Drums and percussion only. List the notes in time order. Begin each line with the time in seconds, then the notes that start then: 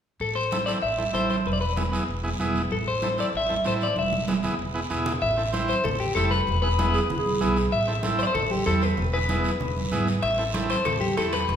0.20 high conga, long guiro
0.51 high conga, short guiro
0.67 short guiro
0.82 high conga, long guiro
1.00 high conga
1.14 high conga, short guiro
1.30 high conga, short guiro
1.46 high conga, long guiro
1.76 high conga, short guiro
1.93 short guiro
2.08 high conga, long guiro
2.25 high conga
2.40 high conga, short guiro
2.55 high conga, short guiro
2.71 high conga, long guiro
3.02 high conga, short guiro
3.18 short guiro
3.33 high conga, long guiro
3.50 high conga
3.64 high conga, short guiro
3.80 short guiro
3.96 high conga, long guiro
4.13 high conga
4.28 high conga, short guiro
4.43 low conga, short guiro
4.59 long guiro
4.90 low conga, short guiro
5.06 low conga, short guiro
5.22 high conga, long guiro
5.53 high conga, short guiro
5.68 short guiro
5.84 high conga, low conga, long guiro
6.16 high conga, short guiro
6.31 short guiro
6.47 high conga, low conga, long guiro
6.79 high conga, short guiro
6.94 short guiro
7.10 high conga, low conga, long guiro
7.26 high conga
7.41 high conga, low conga, short guiro
7.56 short guiro
7.72 high conga, long guiro
8.03 high conga, short guiro
8.19 short guiro
8.35 high conga, low conga, long guiro
8.50 high conga
8.66 high conga, short guiro
8.82 short guiro
8.97 high conga, low conga, long guiro
9.29 high conga, short guiro
9.44 short guiro
9.60 high conga, low conga, long guiro
9.77 high conga
9.91 high conga, low conga, short guiro
10.07 short guiro
10.23 high conga, high timbale, long guiro
10.54 high conga, high timbale, short guiro
10.70 high timbale, short guiro
10.85 high conga, low conga, high timbale, long guiro
11.01 high conga
11.17 high conga, high timbale, short guiro
11.33 high timbale, short guiro
11.48 high conga, low conga, high timbale, long guiro